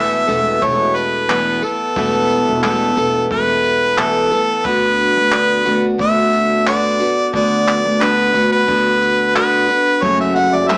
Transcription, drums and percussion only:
0.29 tambourine
0.62 kick
0.96 tambourine
1.30 clap
1.63 tambourine
1.96 kick
2.30 tambourine
2.63 clap
2.97 tambourine
3.31 kick
3.64 tambourine
3.98 clap
4.31 tambourine
4.65 kick
4.98 tambourine
5.32 clap
5.66 tambourine
5.99 kick
6.33 tambourine
6.67 clap
7.00 tambourine
7.34 kick
7.68 clap, tambourine
8.02 clap
8.35 tambourine
8.68 kick
9.02 tambourine
9.36 clap
9.69 tambourine
10.02 kick
10.36 tambourine
10.70 clap

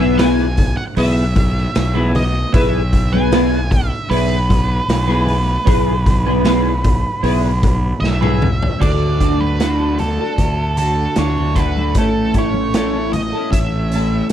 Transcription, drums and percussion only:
0.00 high conga
0.19 snare, open hi-hat
0.39 snare
0.57 kick, open hi-hat, low conga
0.97 open hi-hat
1.36 kick, open hi-hat, high conga
1.58 snare
1.75 snare, open hi-hat
1.95 high conga
2.15 open hi-hat, low conga
2.54 kick, open hi-hat
2.93 kick, open hi-hat
3.14 high conga
3.32 snare, open hi-hat
3.53 snare
3.71 kick, open hi-hat, low conga
4.11 open hi-hat
4.50 kick, open hi-hat, high conga
4.89 snare, open hi-hat
5.08 high conga
5.27 open hi-hat, low conga
5.67 kick, open hi-hat, low conga
6.06 kick, open hi-hat, low conga
6.27 high conga
6.45 snare, open hi-hat
6.84 kick, open hi-hat, high conga, low conga
7.24 open hi-hat
7.63 kick, open hi-hat, high conga
8.04 snare
8.22 mid tom, high conga
8.42 mid tom, low conga
8.62 floor tom
8.82 kick, crash
9.21 kick, closed hi-hat
9.41 high conga
9.60 snare, closed hi-hat
9.98 closed hi-hat, high conga, low conga
10.38 kick, closed hi-hat
10.77 closed hi-hat
11.16 snare, closed hi-hat
11.38 low conga
11.56 kick, closed hi-hat, low conga
11.77 high conga
11.95 kick, closed hi-hat
12.34 kick, closed hi-hat
12.54 high conga
12.74 snare, closed hi-hat
13.13 closed hi-hat, high conga, low conga
13.53 kick, closed hi-hat
13.91 closed hi-hat
14.29 closed hi-hat

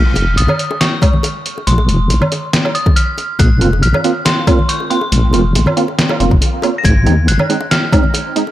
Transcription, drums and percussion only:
0.16 closed hi-hat, high bongo
0.38 closed hi-hat
0.48 high bongo, low conga, low woodblock
0.59 closed hi-hat
0.71 high bongo
0.81 snare, closed hi-hat
1.02 kick, closed hi-hat, high bongo, high conga, low woodblock
1.13 low conga
1.23 closed hi-hat, high bongo
1.46 closed hi-hat
1.58 high bongo
1.67 closed hi-hat, high conga
1.78 high bongo
1.89 closed hi-hat, high conga
2.10 closed hi-hat, high bongo
2.22 low conga, low woodblock
2.32 closed hi-hat, high bongo
2.53 snare, closed hi-hat
2.65 high bongo, low woodblock
2.75 closed hi-hat
2.86 kick, high bongo, low conga
2.96 closed hi-hat
3.18 closed hi-hat, high bongo
3.39 kick, closed hi-hat, high bongo, high conga
3.61 closed hi-hat
3.73 high bongo
3.83 closed hi-hat
3.94 high bongo, low conga, low woodblock
4.04 closed hi-hat
4.25 snare, closed hi-hat, high bongo
4.47 kick, closed hi-hat, high bongo, high conga, low woodblock
4.59 low conga
4.69 closed hi-hat
4.80 high bongo
4.91 closed hi-hat
5.01 high bongo
5.12 closed hi-hat, high conga
5.33 closed hi-hat, high bongo, high conga
5.55 closed hi-hat, high bongo
5.66 low conga, low woodblock
5.77 closed hi-hat
5.88 high bongo
5.99 snare, closed hi-hat
6.09 high bongo, low woodblock
6.20 closed hi-hat
6.31 kick, low conga
6.41 closed hi-hat, high bongo
6.62 closed hi-hat, high bongo, low woodblock
6.84 kick, closed hi-hat, high bongo, high conga
7.06 closed hi-hat, high bongo
7.28 closed hi-hat
7.39 high bongo, low conga, low woodblock
7.50 closed hi-hat
7.61 high bongo
7.71 snare, closed hi-hat
7.92 kick, closed hi-hat, high bongo, high conga, low woodblock
8.04 low conga
8.14 closed hi-hat, high bongo
8.36 closed hi-hat
8.47 high bongo

